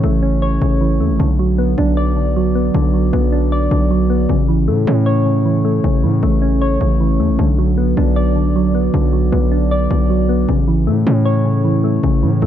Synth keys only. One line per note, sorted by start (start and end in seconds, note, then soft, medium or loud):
0.00 0.61 C#3 loud
0.00 0.81 E3 medium
0.00 0.04 A3 loud
0.00 0.99 A3 medium
0.00 0.23 C#4 medium
0.00 0.42 C#5 medium
0.23 1.19 C#4 medium
0.42 1.20 C#5 loud
0.61 1.20 C#3 medium
0.81 1.20 E3 medium
1.01 1.20 A3 medium
1.19 2.15 D3 loud
1.39 2.35 F#3 medium
1.58 2.54 B3 medium
1.78 2.75 D4 medium
1.97 2.94 D5 loud
2.16 2.73 D3 medium
2.36 2.92 F#3 medium
2.55 3.12 B3 medium
2.75 3.70 D3 loud
2.94 3.89 F#3 medium
3.13 4.09 B3 medium
3.32 4.29 D4 medium
3.52 4.29 D5 loud
3.71 4.29 D3 medium
3.91 4.29 F#3 medium
4.10 4.29 B3 medium
4.29 5.25 C#3 loud
4.48 5.44 E3 medium
4.68 5.64 A3 medium
4.87 5.84 C#4 medium
5.06 6.03 C#5 loud
5.26 5.83 C#3 medium
5.45 6.02 E3 medium
5.65 6.22 A3 medium
5.84 6.80 C#3 loud
6.03 6.99 E3 medium
6.23 7.19 A3 medium
6.42 7.39 C#4 medium
6.62 7.39 C#5 loud
6.81 7.39 C#3 medium
7.00 7.39 E3 medium
7.20 7.39 A3 medium
7.39 8.34 D3 loud
7.58 8.55 F#3 medium
7.78 8.73 B3 medium
7.97 8.94 D4 medium
8.16 9.13 D5 medium
8.36 8.93 D3 medium
8.56 9.12 F#3 medium
8.75 9.31 B3 medium
8.94 9.89 D3 loud
9.13 10.09 F#3 medium
9.32 10.28 B3 medium
9.52 10.49 D4 medium
9.71 10.49 D5 loud
9.91 10.49 D3 medium
10.10 10.49 F#3 medium
10.29 10.49 B3 medium
10.49 11.44 C#3 loud
10.68 11.63 E3 medium
10.87 11.83 A3 loud
11.07 12.03 C#4 medium
11.25 12.23 C#5 loud
11.45 12.02 C#3 medium
11.65 12.22 E3 medium
11.84 12.41 A3 medium
12.04 12.46 C#3 loud
12.23 12.46 E3 medium
12.42 12.46 A3 medium